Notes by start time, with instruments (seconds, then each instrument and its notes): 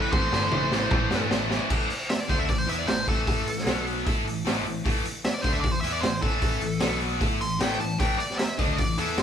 Already playing: distorted electric guitar A2 E3 A3 C4 E4
0.02 lead electric guitar B4
0.12 picked electric bass A1, distorted electric guitar A2 E3 A3 C4 E4, lead electric guitar C5, kick, high tom
0.31 picked electric bass G1, distorted electric guitar A2 E3 A3, snare
0.51 picked electric bass A1, distorted electric guitar A2 E3 A3, mid tom
0.71 picked electric bass A1, distorted electric guitar A2 E3 A3, snare
0.90 picked electric bass A1, distorted electric guitar A2 E3 A3 C4 E4, kick, mid tom
1.10 picked electric bass G2, distorted electric guitar A2 E3 A3, snare
1.30 picked electric bass A1, distorted electric guitar A2 E3 A3, snare
1.50 distorted electric guitar A2 E3 A3, snare
1.69 picked electric bass A1, distorted electric guitar A2 E3 A3, kick, crash
1.89 muted distorted electric guitar stroke, muted picked electric bass stroke, open hi-hat
2.09 lead electric guitar E5, snare, open hi-hat
2.20 lead electric guitar D5
2.28 picked electric bass D2, distorted electric guitar D3 A3 D4, lead electric guitar C5, kick, open hi-hat
2.39 lead electric guitar E5
2.48 picked electric bass A1, distorted electric guitar A2 E3, lead electric guitar D5, kick, open hi-hat
2.58 lead electric guitar C5
2.67 picked electric bass E2, distorted electric guitar E3 B3 E4, lead electric guitar E5, open hi-hat
2.78 lead electric guitar D5
2.86 picked electric bass A1, distorted electric guitar A2 E3, lead electric guitar C5, snare, open hi-hat
3.07 picked electric bass A1, distorted electric guitar A2 E3 A3, lead electric guitar A4, kick, open hi-hat
3.27 kick, open hi-hat
3.46 picked electric bass A1, distorted electric guitar A2 E3, open hi-hat
3.58 snare
3.65 picked electric bass B1, distorted electric guitar B2 F#3 B3, snare, open hi-hat
3.87 open hi-hat
4.05 picked electric bass A2, distorted electric guitar A3 E4 A4, kick, open hi-hat
4.25 picked electric bass A1, distorted electric guitar A2 E3, open hi-hat
4.44 picked electric bass A1, distorted electric guitar A2 E3 A3, snare, open hi-hat
4.57 snare
4.64 picked electric bass A1, distorted electric guitar A2 E3, open hi-hat
4.84 picked electric bass A1, distorted electric guitar A2 E3 A3, kick, open hi-hat
5.04 muted picked electric bass stroke, muted distorted electric guitar stroke, open hi-hat
5.24 lead electric guitar E5, snare, open hi-hat
5.34 lead electric guitar D5
5.42 picked electric bass D2, distorted electric guitar D3 A3 D4, lead electric guitar C5, kick, open hi-hat
5.53 lead electric guitar E5
5.61 picked electric bass A1, distorted electric guitar A2 E3, lead electric guitar D5, kick, open hi-hat
5.71 lead electric guitar C5
5.81 picked electric bass E2, distorted electric guitar E3 B3 E4, lead electric guitar E5, open hi-hat
5.92 lead electric guitar D5
6.01 picked electric bass A1, distorted electric guitar A2 E3, lead electric guitar C5, snare, open hi-hat
6.21 picked electric bass A1, distorted electric guitar A2 E3 A3, lead electric guitar A4, kick, open hi-hat
6.42 kick, open hi-hat
6.61 picked electric bass A1, distorted electric guitar A2 E3, open hi-hat
6.80 picked electric bass B1, distorted electric guitar B2 F#3 B3, snare, open hi-hat
7.01 open hi-hat
7.19 picked electric bass A2, distorted electric guitar A3 E4 A4, kick, open hi-hat
7.39 picked electric bass A1, distorted electric guitar A2 E3, lead electric guitar C6, open hi-hat
7.59 picked electric bass A1, distorted electric guitar A2 E3 A3, lead electric guitar G5, snare, open hi-hat
7.79 picked electric bass A1, distorted electric guitar A2 E3, lead electric guitar A5, open hi-hat
7.99 picked electric bass A1, distorted electric guitar A2 E3 A3, lead electric guitar G5, kick, open hi-hat
8.18 lead electric guitar D5, muted distorted electric guitar stroke, muted picked electric bass stroke, open hi-hat
8.30 snare
8.39 lead electric guitar E5, snare, open hi-hat
8.58 picked electric bass D2, distorted electric guitar D3 A3 D4, lead electric guitar D#5, kick, open hi-hat
8.78 picked electric bass A1, distorted electric guitar A2 E3, lead electric guitar D5, kick, open hi-hat
8.98 picked electric bass E2, distorted electric guitar E3 B3 E4, lead electric guitar A4, open hi-hat
9.18 picked electric bass A1, distorted electric guitar A2 E3, lead electric guitar C5, snare, open hi-hat